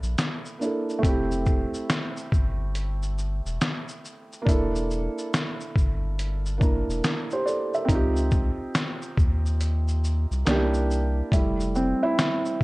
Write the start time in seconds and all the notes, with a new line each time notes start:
Already playing: A#3 D4 E4 A4
0.03 A#1, shaker
0.18 snare, closed hi-hat, shaker
0.45 shaker
0.59 A#3 D4 E4, shaker
0.64 A4
0.89 shaker
0.99 A3 C4
1.03 F1 E4, kick, closed hi-hat, shaker
1.09 G4
1.31 shaker
1.46 kick, shaker
1.74 shaker
1.90 snare, closed hi-hat, shaker
2.17 shaker
2.32 G1, kick, shaker
2.75 closed hi-hat, shaker
3.03 shaker
3.18 shaker
3.46 E1, shaker
3.61 snare, closed hi-hat, shaker
3.88 shaker
4.05 shaker
4.33 shaker
4.42 A#3 D4
4.47 E1 E4, kick, closed hi-hat, shaker
4.52 A4
4.75 shaker
4.91 shaker
5.18 shaker
5.34 snare, closed hi-hat, shaker
5.60 shaker
5.76 G1, kick, shaker
6.19 closed hi-hat, shaker
6.46 shaker
6.58 A#3 D4 E4, kick, shaker
6.63 A#4
6.88 E1, shaker
7.04 snare, closed hi-hat, shaker
7.31 G4 C5, shaker
7.46 A4 D5, shaker
7.74 A#4 E5, shaker
7.85 C#2 C4 D#4, kick
7.89 F4, closed hi-hat, shaker
7.95 G4
8.16 shaker
8.31 kick, shaker
8.75 snare, closed hi-hat, shaker
9.02 shaker
9.17 D#2, kick, shaker
9.46 shaker
9.61 closed hi-hat, shaker
9.88 shaker
10.04 shaker
10.31 C2, shaker
10.46 C2 A#3 D4 D#4, snare, closed hi-hat, shaker
10.51 G4
10.56 E4
10.74 shaker
10.91 shaker
11.32 F1 G3 A3 E4, kick, closed hi-hat, shaker
11.60 shaker
11.75 C4, shaker
12.03 E4
12.19 snare, closed hi-hat, shaker
12.45 shaker
12.61 kick